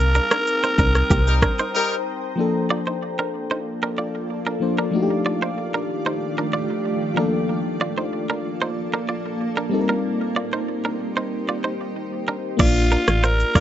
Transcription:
Already playing: fm bass C2, fm electric piano G3 C4 D#4 A#4, alto saxophone A#4, ambient pad C5 G5 A#5 D#6
0.15 clean electric guitar D4 A#4, shaker
0.31 clean electric guitar D4 A#4, cross-stick, shaker
0.47 shaker
0.63 clean electric guitar D#4 C5, shaker
0.78 fm bass C2, clean electric guitar D4 A#4, kick, shaker
0.95 cross-stick, shaker
1.10 fm bass C2, clean electric guitar A#3 G4, kick, shaker
1.27 horn section G3 D#4 A#4, shaker
1.42 clean electric guitar D4 A#4, kick, cross-stick, shaker
1.59 clean electric guitar D#4 C5, shaker
1.74 horn section G3 D#4 A#4
2.36 fm electric piano F3 A#3 D4, ambient pad A#3 F4 A4 D5
2.41 fm electric piano A4
2.70 clean electric guitar F4 D5
2.87 clean electric guitar D#4 C5
3.19 clean electric guitar D4 A#4
3.51 clean electric guitar D#4 C5
3.83 clean electric guitar D4 A#4
3.98 clean electric guitar F4 D5
4.47 clean electric guitar D4 A#4
4.60 fm electric piano F3 A#3 D4 C5
4.79 clean electric guitar D4 A#4
4.91 ambient pad D#3 A3 G4, fm electric piano F3 A3 D4 D#4
4.96 fm electric piano F#4
5.02 fm electric piano G4
5.26 clean electric guitar F4 D5
5.42 clean electric guitar D#4 C5
5.74 clean electric guitar D4 A#4
6.06 clean electric guitar D#4 C5
6.38 clean electric guitar D4 A#4
6.53 clean electric guitar F4 D5
7.14 fm electric piano F3 A#3 D4, ambient pad A#3 A4, clean electric guitar D4 A#4
7.19 fm electric piano A4
7.81 clean electric guitar F4 D5
7.98 clean electric guitar D#4 C5
8.30 clean electric guitar D4 A#4
8.62 clean electric guitar D#4 C5
8.94 clean electric guitar D4 A#4
9.09 clean electric guitar F4 D5
9.57 clean electric guitar D4 A#4
9.69 fm electric piano G3 C4 D#4, ambient pad D#4 G4 C5
9.74 fm electric piano A4
9.81 fm electric piano A#4
9.89 clean electric guitar D4 A#4
10.36 clean electric guitar F4 D5
10.53 clean electric guitar D#4 C5
10.85 clean electric guitar D4 A#4
11.17 clean electric guitar D#4 C5
11.49 clean electric guitar F4 D5
11.64 clean electric guitar D#4 C5
12.28 clean electric guitar D4 A#4
12.57 fm bass A#1, fm electric piano A#3 D4 F4, alto saxophone F4, clean electric guitar F4 D5, kick, crash, shaker
12.62 fm electric piano D5
12.76 shaker
12.91 clean electric guitar D4 A#4, shaker
13.08 fm bass A1, cross-stick, shaker
13.24 clean electric guitar F4 C5, alto saxophone A#4, shaker
13.40 shaker
13.55 fm bass C2, clean electric guitar F4 D5, alto saxophone A#4, kick, cross-stick, open hi-hat

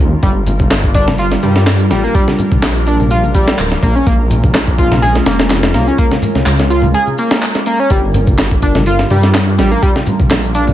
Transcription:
Already playing: analog synth pad G#3 C#4 F4 A#4
0.00 detuned saw bass D#2
0.23 detuned saw bass G1, analog synth lead G3, analog synth pad G3 D4 A#4, kick, closed hi-hat, shaker
0.46 closed hi-hat, low conga, shaker
0.59 kick, high conga, shaker
0.71 snare, clap, closed hi-hat, shaker
0.84 kick, shaker
0.94 analog synth lead D4, kick, closed hi-hat, shaker
1.08 snare, high conga, low conga, shaker
1.18 analog synth lead F4, open hi-hat, shaker
1.32 snare, shaker
1.43 detuned saw bass G2, analog synth lead G3, closed hi-hat, high conga, shaker
1.56 analog synth lead G3, snare, shaker
1.67 snare, clap, closed hi-hat, shaker
1.80 closed hi-hat, shaker
1.91 detuned saw bass A1, analog synth lead G3, snare, closed hi-hat, shaker
2.04 analog synth lead A#3, shaker
2.15 analog synth lead G3, kick, closed hi-hat, shaker
2.28 snare, high conga
2.39 closed hi-hat, low conga, shaker
2.51 detuned saw bass A#1, kick, high conga, shaker
2.62 detuned saw bass A#1, snare, clap, closed hi-hat, shaker
2.76 closed hi-hat, shaker
2.87 analog synth lead D4, closed hi-hat, shaker
3.00 high conga, low conga, shaker
3.11 analog synth lead F4, closed hi-hat, shaker
3.24 high conga, shaker
3.35 analog synth lead G3, kick, closed hi-hat, shaker
3.48 analog synth lead G3, snare, shaker
3.59 detuned saw bass D1, clap, closed hi-hat, shaker
3.72 snare, shaker
3.83 detuned saw bass A#1, analog synth pad G#3 C#4 F4, analog synth lead A#3, kick, closed hi-hat, shaker
3.95 analog synth lead C#4, shaker
4.07 detuned saw bass A#1, analog synth lead A#3, kick, closed hi-hat, shaker
4.30 closed hi-hat, low conga, shaker
4.44 kick, high conga, shaker
4.54 snare, clap, closed hi-hat, shaker
4.67 kick, shaker
4.78 analog synth lead F4, kick, closed hi-hat, shaker
4.91 snare, high conga, low conga, shaker
5.02 analog synth lead G#4, open hi-hat, shaker
5.15 snare, shaker
5.26 detuned saw bass F1, analog synth lead A#3, snare, closed hi-hat, high conga, shaker
5.39 analog synth lead A#3, snare, closed hi-hat, shaker
5.50 snare, clap, closed hi-hat, shaker
5.63 snare, closed hi-hat, shaker
5.74 detuned saw bass C2, analog synth lead A#3, snare, closed hi-hat, shaker
5.87 analog synth lead C#4, shaker
5.98 analog synth lead A#3, kick, closed hi-hat, shaker
6.11 snare, high conga, shaker
6.22 open hi-hat, low conga, shaker
6.35 detuned saw bass C#2, snare, high conga, shaker
6.46 detuned saw bass C#2, clap, closed hi-hat, shaker
6.59 snare, shaker
6.70 analog synth lead F4, closed hi-hat, shaker
6.82 high conga, low conga, shaker
6.94 analog synth lead G#4, closed hi-hat, shaker
7.07 high conga, shaker
7.18 analog synth lead A#3, closed hi-hat, shaker
7.31 analog synth lead A#3, snare, shaker
7.42 clap, closed hi-hat, shaker
7.55 snare, shaker
7.66 analog synth lead A#3, closed hi-hat, shaker
7.79 analog synth lead C#4, shaker
7.90 detuned saw bass G1, analog synth pad G3 D4 F4, analog synth lead G3, kick, closed hi-hat, shaker
8.14 closed hi-hat, low conga, shaker
8.27 kick, high conga, shaker
8.38 snare, clap, closed hi-hat, shaker
8.51 kick, shaker
8.62 analog synth lead D4, kick, closed hi-hat, shaker
8.75 snare, high conga, low conga, shaker
8.86 analog synth lead F4, open hi-hat, shaker
8.99 snare, shaker
9.10 detuned saw bass G2, analog synth lead G3, closed hi-hat, high conga, shaker
9.23 analog synth lead G3, snare, shaker
9.34 snare, clap, closed hi-hat, shaker
9.47 closed hi-hat, shaker
9.58 detuned saw bass A1, analog synth lead G3, snare, closed hi-hat, shaker
9.71 analog synth lead A#3, shaker
9.82 analog synth lead G3, kick, closed hi-hat, shaker
9.96 snare, high conga
10.06 closed hi-hat, low conga, shaker
10.20 detuned saw bass A#1, kick, high conga, shaker
10.30 detuned saw bass A#1, snare, clap, closed hi-hat, shaker
10.44 closed hi-hat, shaker
10.55 analog synth lead D4, closed hi-hat, shaker
10.67 high conga, low conga, shaker

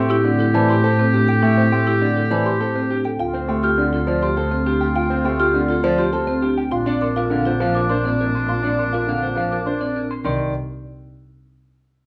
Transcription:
Already playing: double bass A2, grand piano A3, marimba G4, oboe G4, clean electric guitar G5, celesta C6
0.10 marimba E4, clean electric guitar G4, celesta E6
0.24 grand piano D3, marimba C4, clean electric guitar D5
0.39 marimba E4, clean electric guitar A4
0.54 grand piano E3, marimba C5, clean electric guitar D5, celesta A5
0.69 marimba E4, clean electric guitar G4, celesta C6
0.84 grand piano C4, marimba G4, clean electric guitar A4, celesta A5
0.99 marimba C4, clean electric guitar C5
1.13 marimba D4, clean electric guitar G4
1.28 marimba A4, clean electric guitar G5
1.42 grand piano A3, marimba E4, celesta E5, clean electric guitar G5
1.57 grand piano C4, marimba C4, clean electric guitar C5
1.72 grand piano A3, marimba G4, clean electric guitar G5, celesta C6
1.87 marimba E4, clean electric guitar G4, celesta E6
2.01 grand piano D3, marimba C4, clean electric guitar D5
2.17 marimba E4, clean electric guitar A4
2.31 grand piano E3, marimba C5, clean electric guitar D5, celesta A5
2.46 marimba E4, clean electric guitar G4, celesta C6
2.60 grand piano C4, marimba G4, clean electric guitar A4, celesta A5
2.75 marimba C4, clean electric guitar C5
2.90 marimba D4, clean electric guitar G4
3.05 marimba A4, clean electric guitar G5
3.19 double bass D2, marimba F4, oboe F4, celesta F5, clean electric guitar G5
3.33 grand piano C4, marimba C4, clean electric guitar C5
3.48 grand piano A3, marimba G4, clean electric guitar G5, celesta C6
3.63 marimba F4, clean electric guitar G4, celesta F6
3.78 grand piano D3, marimba C4, clean electric guitar D5
3.93 marimba F4, clean electric guitar A4
4.07 grand piano F3, marimba C5, clean electric guitar D5
4.22 marimba F4, clean electric guitar G4, celesta C6
4.37 grand piano C4, marimba G4, clean electric guitar A4, celesta A5
4.51 marimba C4, clean electric guitar C5
4.66 marimba D4, clean electric guitar G4
4.81 clean electric guitar G5
4.96 marimba F4, celesta F5, clean electric guitar G5
5.10 grand piano C4, marimba C4, clean electric guitar C5
5.25 grand piano A3, marimba G4, clean electric guitar G5, celesta C6
5.40 marimba F4, clean electric guitar G4, celesta F6
5.54 grand piano D3, marimba C4, clean electric guitar D5
5.69 marimba F4, clean electric guitar A4
5.84 grand piano F3, marimba C5, clean electric guitar D5
5.98 marimba F4, clean electric guitar G4, celesta C6
6.13 grand piano C4, marimba G4, clean electric guitar A4, celesta A5
6.27 marimba C4, clean electric guitar C5
6.42 marimba D4, clean electric guitar G4
6.58 clean electric guitar G5
6.72 double bass A#1, oboe D4, marimba F4, celesta F5, clean electric guitar C6
6.86 marimba C4, grand piano D4, clean electric guitar D5
7.01 marimba A#4, clean electric guitar C6, celesta D6
7.16 marimba F4, clean electric guitar A#4, celesta F5
7.30 grand piano D3, marimba C4, clean electric guitar F5
7.45 marimba F4, clean electric guitar C5
7.60 grand piano F3, clean electric guitar F5
7.75 marimba F4, clean electric guitar A#4, celesta D6
7.89 grand piano D4, marimba A#4, clean electric guitar C5, celesta C6
8.04 marimba C4, clean electric guitar D5
8.19 marimba D4, clean electric guitar A#4
8.35 clean electric guitar C6
8.49 marimba F4, celesta F5, clean electric guitar C6
8.63 marimba C4, grand piano D4, clean electric guitar D5
8.78 marimba A#4, clean electric guitar C6, celesta D6
8.93 marimba F4, clean electric guitar A#4, celesta F5
9.07 grand piano D3, marimba C4, clean electric guitar F5
9.23 marimba F4, clean electric guitar C5
9.36 grand piano F3, clean electric guitar F5
9.51 marimba F4, clean electric guitar A#4, celesta D6
9.66 grand piano D4, marimba A#4, clean electric guitar C5, celesta C6
9.81 marimba C4, clean electric guitar D5
9.95 marimba D4, clean electric guitar A#4
10.11 clean electric guitar C6
10.24 double bass C2, grand piano D#3, marimba D#4, clean electric guitar D5, celesta C6

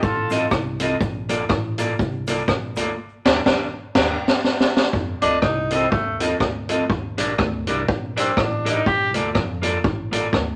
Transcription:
0.02 upright bass A1, horn section F4 A4, kick, cabasa
0.30 clean electric guitar C4 F4 A4 D#5, closed hi-hat, cabasa
0.51 upright bass C2, muted clean electric guitar stroke, kick, cross-stick, cabasa
0.80 clean electric guitar C4 F4 A4 D#5, closed hi-hat, cabasa
1.01 upright bass A#1, kick, cabasa
1.29 clean electric guitar A#3 F4 A4 D5, closed hi-hat, cabasa
1.49 upright bass A1, kick, cross-stick, cabasa
1.78 clean electric guitar A#3 F4 A4 D5, closed hi-hat, cabasa
1.99 upright bass C2, kick, cabasa
2.27 clean electric guitar A#3 F4 A4 D5, closed hi-hat, cabasa
2.48 upright bass A#1, muted clean electric guitar stroke, kick, cross-stick, cabasa
2.76 upright bass D2, clean electric guitar A#3 F4 A4 D5, closed hi-hat, cabasa
3.25 upright bass D#2, clean electric guitar D4 G4 A#4 D5, kick, snare, crash
3.46 upright bass D#2, clean electric guitar D4 G4 A#4 D5, kick, snare
3.95 upright bass D#2, clean electric guitar D4 G4 A#4 D5, kick, snare, crash
4.28 snare
4.44 snare
4.60 snare
4.77 snare
4.93 upright bass F2, kick
5.22 upright bass D2, clean electric guitar C4 F4 A4 D#5, tenor saxophone D4, closed hi-hat
5.42 upright bass C2, tenor saxophone D#4, kick, cross-stick
5.71 clean electric guitar C4 F4 A4 D#5, tenor saxophone C4, closed hi-hat
5.91 upright bass D#2, tenor saxophone A3, kick
6.20 clean electric guitar C4 F4 A4 D#5, closed hi-hat
6.40 upright bass D2, muted clean electric guitar stroke, kick, cross-stick
6.69 clean electric guitar C4 F4 A4 D#5, closed hi-hat
6.90 upright bass D#2, kick
7.18 upright bass A#1, clean electric guitar D4 G4 A#4 D5, closed hi-hat
7.38 upright bass D2, kick, cross-stick
7.67 upright bass C2, clean electric guitar D4 G4 A#4 D5, closed hi-hat
7.88 upright bass A#1, kick
8.17 tenor saxophone C4, clean electric guitar D4 G4 A#4 D5, closed hi-hat
8.37 upright bass A1, tenor saxophone D4, muted clean electric guitar stroke, kick, cross-stick
8.65 clean electric guitar D4 G4 A#4 D5, closed hi-hat
8.71 tenor saxophone D#4
8.86 upright bass A#1, tenor saxophone G4, kick
9.14 upright bass D2, clean electric guitar A#3 F4 A4 D5, closed hi-hat
9.35 upright bass F2, kick, cross-stick
9.62 clean electric guitar A#3 F4 A4 D5, closed hi-hat
9.84 upright bass A1, kick
10.12 clean electric guitar A#3 F4 A4 D5, closed hi-hat
10.33 upright bass D2, muted clean electric guitar stroke, kick, cross-stick

